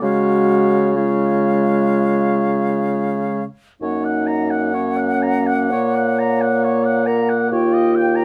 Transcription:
0, 0, Header, 1, 6, 480
1, 0, Start_track
1, 0, Key_signature, 6, "major"
1, 0, Tempo, 943396
1, 9, Time_signature, 4, 2, 24, 8
1, 2409, Tempo, 988468
1, 2889, Tempo, 913242
1, 3369, Tempo, 872093
1, 4255, End_track
2, 0, Start_track
2, 0, Title_t, "Oboe"
2, 0, Program_c, 0, 68
2, 19, Note_on_c, 0, 73, 56
2, 480, Note_off_c, 0, 73, 0
2, 491, Note_on_c, 0, 73, 61
2, 1750, Note_off_c, 0, 73, 0
2, 1945, Note_on_c, 0, 73, 49
2, 2060, Note_on_c, 0, 78, 43
2, 2068, Note_off_c, 0, 73, 0
2, 2172, Note_on_c, 0, 82, 50
2, 2180, Note_off_c, 0, 78, 0
2, 2293, Note_on_c, 0, 78, 45
2, 2300, Note_off_c, 0, 82, 0
2, 2410, Note_on_c, 0, 73, 47
2, 2418, Note_off_c, 0, 78, 0
2, 2526, Note_on_c, 0, 78, 43
2, 2533, Note_off_c, 0, 73, 0
2, 2647, Note_on_c, 0, 82, 47
2, 2654, Note_off_c, 0, 78, 0
2, 2767, Note_on_c, 0, 78, 44
2, 2774, Note_off_c, 0, 82, 0
2, 2883, Note_off_c, 0, 78, 0
2, 2886, Note_on_c, 0, 73, 53
2, 3010, Note_on_c, 0, 78, 48
2, 3018, Note_off_c, 0, 73, 0
2, 3132, Note_on_c, 0, 82, 51
2, 3140, Note_off_c, 0, 78, 0
2, 3253, Note_on_c, 0, 78, 47
2, 3261, Note_off_c, 0, 82, 0
2, 3370, Note_on_c, 0, 73, 51
2, 3379, Note_off_c, 0, 78, 0
2, 3486, Note_on_c, 0, 78, 49
2, 3494, Note_off_c, 0, 73, 0
2, 3606, Note_on_c, 0, 82, 57
2, 3614, Note_off_c, 0, 78, 0
2, 3731, Note_on_c, 0, 78, 52
2, 3739, Note_off_c, 0, 82, 0
2, 3851, Note_off_c, 0, 78, 0
2, 3855, Note_on_c, 0, 73, 56
2, 3975, Note_on_c, 0, 75, 52
2, 3983, Note_off_c, 0, 73, 0
2, 4094, Note_on_c, 0, 79, 54
2, 4102, Note_off_c, 0, 75, 0
2, 4205, Note_on_c, 0, 82, 54
2, 4213, Note_off_c, 0, 79, 0
2, 4255, Note_off_c, 0, 82, 0
2, 4255, End_track
3, 0, Start_track
3, 0, Title_t, "Flute"
3, 0, Program_c, 1, 73
3, 11, Note_on_c, 1, 77, 54
3, 475, Note_off_c, 1, 77, 0
3, 484, Note_on_c, 1, 77, 58
3, 1747, Note_off_c, 1, 77, 0
3, 1943, Note_on_c, 1, 78, 49
3, 3834, Note_off_c, 1, 78, 0
3, 3859, Note_on_c, 1, 79, 58
3, 4255, Note_off_c, 1, 79, 0
3, 4255, End_track
4, 0, Start_track
4, 0, Title_t, "French horn"
4, 0, Program_c, 2, 60
4, 13, Note_on_c, 2, 66, 86
4, 489, Note_on_c, 2, 65, 67
4, 497, Note_off_c, 2, 66, 0
4, 1702, Note_off_c, 2, 65, 0
4, 1943, Note_on_c, 2, 63, 72
4, 2408, Note_on_c, 2, 61, 59
4, 2415, Note_off_c, 2, 63, 0
4, 2888, Note_on_c, 2, 73, 69
4, 2896, Note_off_c, 2, 61, 0
4, 3610, Note_on_c, 2, 70, 82
4, 3618, Note_off_c, 2, 73, 0
4, 3851, Note_off_c, 2, 70, 0
4, 3854, Note_on_c, 2, 65, 92
4, 4255, Note_off_c, 2, 65, 0
4, 4255, End_track
5, 0, Start_track
5, 0, Title_t, "Clarinet"
5, 0, Program_c, 3, 71
5, 12, Note_on_c, 3, 56, 60
5, 476, Note_off_c, 3, 56, 0
5, 489, Note_on_c, 3, 56, 60
5, 1749, Note_off_c, 3, 56, 0
5, 1941, Note_on_c, 3, 58, 51
5, 4255, Note_off_c, 3, 58, 0
5, 4255, End_track
6, 0, Start_track
6, 0, Title_t, "Bassoon"
6, 0, Program_c, 4, 70
6, 10, Note_on_c, 4, 49, 61
6, 1747, Note_off_c, 4, 49, 0
6, 1943, Note_on_c, 4, 42, 52
6, 2892, Note_on_c, 4, 46, 56
6, 2900, Note_off_c, 4, 42, 0
6, 3849, Note_off_c, 4, 46, 0
6, 3853, Note_on_c, 4, 39, 64
6, 4255, Note_off_c, 4, 39, 0
6, 4255, End_track
0, 0, End_of_file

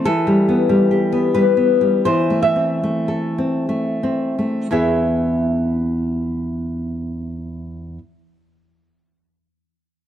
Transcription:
0, 0, Header, 1, 2, 480
1, 0, Start_track
1, 0, Tempo, 641026
1, 37, Time_signature, 3, 2, 24, 8
1, 997, Tempo, 700117
1, 1477, Tempo, 760456
1, 1957, Tempo, 878477
1, 2437, Tempo, 1030928
1, 2917, Tempo, 903614
1, 5770, End_track
2, 0, Start_track
2, 0, Title_t, "Nylon-string guitar"
2, 0, Program_c, 0, 24
2, 41, Note_on_c, 0, 69, 90
2, 45, Note_on_c, 0, 52, 56
2, 202, Note_on_c, 0, 55, 47
2, 364, Note_on_c, 0, 59, 40
2, 510, Note_off_c, 0, 55, 0
2, 519, Note_on_c, 0, 55, 51
2, 678, Note_off_c, 0, 59, 0
2, 681, Note_on_c, 0, 67, 42
2, 842, Note_on_c, 0, 59, 46
2, 969, Note_off_c, 0, 69, 0
2, 1003, Note_off_c, 0, 55, 0
2, 1006, Note_on_c, 0, 71, 59
2, 1011, Note_on_c, 0, 55, 46
2, 1152, Note_off_c, 0, 59, 0
2, 1160, Note_on_c, 0, 59, 41
2, 1317, Note_off_c, 0, 55, 0
2, 1326, Note_on_c, 0, 55, 44
2, 1398, Note_off_c, 0, 67, 0
2, 1454, Note_off_c, 0, 52, 0
2, 1463, Note_off_c, 0, 71, 0
2, 1481, Note_off_c, 0, 59, 0
2, 1483, Note_off_c, 0, 55, 0
2, 1490, Note_on_c, 0, 72, 81
2, 1496, Note_on_c, 0, 52, 56
2, 1648, Note_on_c, 0, 57, 42
2, 1709, Note_off_c, 0, 72, 0
2, 1725, Note_on_c, 0, 76, 62
2, 1809, Note_on_c, 0, 60, 40
2, 1974, Note_off_c, 0, 57, 0
2, 1981, Note_on_c, 0, 57, 46
2, 2115, Note_on_c, 0, 69, 38
2, 2274, Note_off_c, 0, 60, 0
2, 2280, Note_on_c, 0, 60, 38
2, 2440, Note_off_c, 0, 57, 0
2, 2445, Note_on_c, 0, 57, 34
2, 2600, Note_off_c, 0, 60, 0
2, 2606, Note_on_c, 0, 60, 34
2, 2765, Note_off_c, 0, 57, 0
2, 2770, Note_on_c, 0, 57, 33
2, 2846, Note_off_c, 0, 69, 0
2, 2903, Note_off_c, 0, 76, 0
2, 2905, Note_off_c, 0, 52, 0
2, 2920, Note_off_c, 0, 57, 0
2, 2920, Note_on_c, 0, 40, 46
2, 2922, Note_off_c, 0, 60, 0
2, 2922, Note_on_c, 0, 59, 36
2, 2924, Note_on_c, 0, 64, 35
2, 2926, Note_on_c, 0, 68, 38
2, 2929, Note_on_c, 0, 76, 45
2, 4655, Note_off_c, 0, 40, 0
2, 4656, Note_off_c, 0, 59, 0
2, 4660, Note_off_c, 0, 64, 0
2, 4660, Note_off_c, 0, 68, 0
2, 4660, Note_off_c, 0, 76, 0
2, 5770, End_track
0, 0, End_of_file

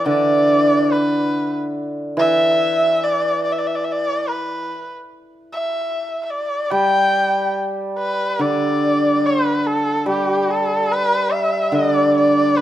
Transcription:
0, 0, Header, 1, 3, 480
1, 0, Start_track
1, 0, Tempo, 840336
1, 48, Time_signature, 2, 2, 24, 8
1, 1969, Tempo, 819672
1, 3889, Tempo, 835655
1, 7271, End_track
2, 0, Start_track
2, 0, Title_t, "Erhu"
2, 0, Program_c, 0, 110
2, 44, Note_on_c, 0, 74, 95
2, 527, Note_on_c, 0, 71, 76
2, 536, Note_off_c, 0, 74, 0
2, 890, Note_off_c, 0, 71, 0
2, 1252, Note_on_c, 0, 76, 97
2, 1735, Note_on_c, 0, 74, 86
2, 1743, Note_off_c, 0, 76, 0
2, 1962, Note_off_c, 0, 74, 0
2, 1965, Note_on_c, 0, 74, 72
2, 2013, Note_on_c, 0, 76, 67
2, 2022, Note_off_c, 0, 74, 0
2, 2052, Note_on_c, 0, 74, 70
2, 2061, Note_off_c, 0, 76, 0
2, 2100, Note_on_c, 0, 76, 70
2, 2109, Note_off_c, 0, 74, 0
2, 2148, Note_on_c, 0, 74, 72
2, 2157, Note_off_c, 0, 76, 0
2, 2201, Note_on_c, 0, 76, 65
2, 2210, Note_off_c, 0, 74, 0
2, 2245, Note_on_c, 0, 74, 86
2, 2254, Note_off_c, 0, 76, 0
2, 2461, Note_on_c, 0, 71, 73
2, 2469, Note_off_c, 0, 74, 0
2, 2818, Note_off_c, 0, 71, 0
2, 3188, Note_on_c, 0, 76, 79
2, 3589, Note_off_c, 0, 76, 0
2, 3608, Note_on_c, 0, 76, 64
2, 3643, Note_on_c, 0, 74, 83
2, 3652, Note_off_c, 0, 76, 0
2, 3876, Note_on_c, 0, 79, 98
2, 3885, Note_off_c, 0, 74, 0
2, 4366, Note_off_c, 0, 79, 0
2, 4612, Note_on_c, 0, 71, 88
2, 4853, Note_on_c, 0, 74, 84
2, 4862, Note_off_c, 0, 71, 0
2, 5344, Note_on_c, 0, 71, 78
2, 5353, Note_off_c, 0, 74, 0
2, 5580, Note_on_c, 0, 69, 87
2, 5588, Note_off_c, 0, 71, 0
2, 5818, Note_off_c, 0, 69, 0
2, 5822, Note_on_c, 0, 67, 81
2, 6061, Note_on_c, 0, 69, 79
2, 6070, Note_off_c, 0, 67, 0
2, 6299, Note_on_c, 0, 71, 91
2, 6307, Note_off_c, 0, 69, 0
2, 6526, Note_on_c, 0, 76, 91
2, 6534, Note_off_c, 0, 71, 0
2, 6774, Note_on_c, 0, 74, 92
2, 6783, Note_off_c, 0, 76, 0
2, 7010, Note_off_c, 0, 74, 0
2, 7019, Note_on_c, 0, 74, 89
2, 7250, Note_on_c, 0, 71, 93
2, 7259, Note_off_c, 0, 74, 0
2, 7271, Note_off_c, 0, 71, 0
2, 7271, End_track
3, 0, Start_track
3, 0, Title_t, "Hammered dulcimer"
3, 0, Program_c, 1, 15
3, 0, Note_on_c, 1, 52, 66
3, 32, Note_on_c, 1, 50, 63
3, 760, Note_off_c, 1, 52, 0
3, 1239, Note_on_c, 1, 52, 60
3, 1486, Note_off_c, 1, 50, 0
3, 2688, Note_off_c, 1, 52, 0
3, 3881, Note_on_c, 1, 55, 60
3, 4846, Note_on_c, 1, 50, 54
3, 5336, Note_off_c, 1, 55, 0
3, 5804, Note_on_c, 1, 55, 54
3, 6288, Note_off_c, 1, 50, 0
3, 6757, Note_on_c, 1, 50, 57
3, 7240, Note_off_c, 1, 55, 0
3, 7271, Note_off_c, 1, 50, 0
3, 7271, End_track
0, 0, End_of_file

